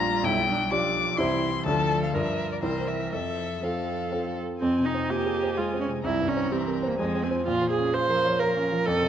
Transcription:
0.00 0.23 A#1 soft
0.00 0.73 G3 medium
0.00 0.21 D4 soft
0.00 0.21 F4 soft
0.00 0.26 F4 soft
0.00 0.21 D5 soft
0.00 0.26 A#5 medium
0.23 0.70 B1 medium
0.23 0.48 E4 medium
0.23 0.72 G5 medium
0.49 0.71 D4 medium
0.71 1.21 F3 soft
0.71 1.18 D4 soft
0.71 1.15 F4 soft
0.71 1.15 G4 soft
0.71 1.15 D5 soft
0.71 1.19 D6 medium
1.18 1.65 C2 medium
1.18 1.67 E3 soft
1.18 1.62 E4 soft
1.18 1.66 E4 soft
1.18 1.63 G4 soft
1.18 1.63 C5 soft
1.18 1.65 C6 medium
1.66 2.13 D2 soft
1.66 2.12 F3 soft
1.66 2.11 D4 soft
1.66 2.11 F4 soft
1.66 2.16 A4 soft
1.66 2.11 A4 soft
1.66 2.02 A5 medium
2.03 2.15 F5 soft
2.13 2.61 G2 soft
2.13 2.64 F3 soft
2.13 2.59 D4 soft
2.13 2.59 F4 soft
2.13 2.63 A#4 soft
2.13 2.59 A#4 soft
2.13 2.51 E5 medium
2.52 2.56 D5 soft
2.62 3.11 C2 soft
2.62 3.15 E3 soft
2.62 3.08 C4 soft
2.62 3.09 E4 soft
2.62 3.09 A#4 soft
2.62 3.14 A#4 soft
2.62 2.89 C5 soft
2.87 3.12 E5 soft
3.12 3.61 F2 soft
3.12 3.62 F3 soft
3.12 3.63 A4 soft
3.12 3.65 E5 medium
3.63 4.39 F3 soft
3.63 4.08 C4 soft
3.63 4.08 F4 soft
3.63 4.40 A4 soft
3.63 4.09 A4 soft
3.63 4.37 F5 soft
4.12 4.57 C4 soft
4.12 4.57 F4 soft
4.12 4.57 A4 soft
4.61 6.01 F2 soft
4.61 4.87 C4 medium
4.61 6.01 G#5 soft
4.79 5.04 C3 soft
4.85 5.11 D#4 medium
4.94 5.20 C4 soft
5.10 5.59 A#3 soft
5.10 5.35 F4 soft
5.10 5.59 G4 medium
5.26 5.51 G#4 soft
5.43 5.68 C5 soft
5.57 6.05 G#3 soft
5.57 5.80 F4 soft
5.57 5.83 G#4 soft
5.74 5.99 C4 soft
5.81 5.89 C#4 soft
5.89 6.05 C3 soft
6.04 6.97 C2 soft
6.04 6.52 G3 soft
6.04 6.30 E4 medium
6.04 6.95 A#5 soft
6.20 6.46 G2 soft
6.28 6.53 C#4 medium
6.36 6.62 C4 soft
6.52 6.99 E3 soft
6.52 6.90 C4 soft
6.52 6.77 G4 soft
6.68 6.93 A#4 soft
6.83 6.99 C5 soft
6.89 6.99 A#3 soft
6.99 7.46 F2 soft
6.99 7.46 F3 soft
6.99 7.25 G#3 soft
6.99 7.44 G#5 soft
7.15 7.40 C4 soft
7.23 7.46 C4 soft
7.30 7.45 F4 soft
7.30 7.45 C5 soft
7.46 8.83 A#2 soft
7.46 9.09 F3 soft
7.46 7.70 F4 medium
7.46 8.83 F5 soft
7.62 7.88 F3 soft
7.70 7.95 G#4 medium
7.78 8.04 C#4 soft
7.93 8.19 F4 soft
7.93 8.41 C5 medium
8.10 8.35 A#4 soft
8.26 8.51 C#5 soft
8.39 8.88 A#4 medium
8.39 8.66 A#4 soft
8.57 8.81 C#4 soft
8.72 8.87 F3 soft
8.86 9.09 F2 medium
8.86 9.09 A4 medium
8.86 9.09 D#5 soft
9.02 9.09 C3 soft

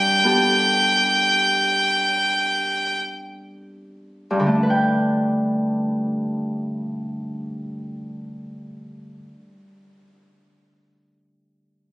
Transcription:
0.00 2.98 G2 soft
0.00 2.99 G5 medium
0.24 4.47 B3 soft
0.24 4.47 G4 soft
0.24 4.47 A4 soft
4.31 9.20 G2 soft
4.39 9.29 D3 soft
4.46 9.36 A3 soft
4.55 9.44 D4 soft
4.63 9.52 B4 soft
4.70 9.59 G5 soft

